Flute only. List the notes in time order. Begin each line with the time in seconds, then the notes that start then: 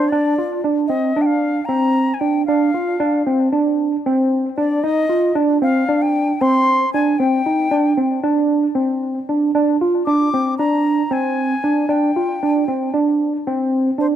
Already playing: C5
0.09 D5
0.87 D#5
1.22 G5
1.26 F5
1.65 A#5
2.14 G#5
2.20 G5
2.46 F5
4.57 D5
4.83 D#5
5.63 F5
6.02 G5
6.41 C6
6.93 G#5
7.18 G5
10.06 D6
10.58 A#5
11.13 G#5
11.90 G5
14.00 C5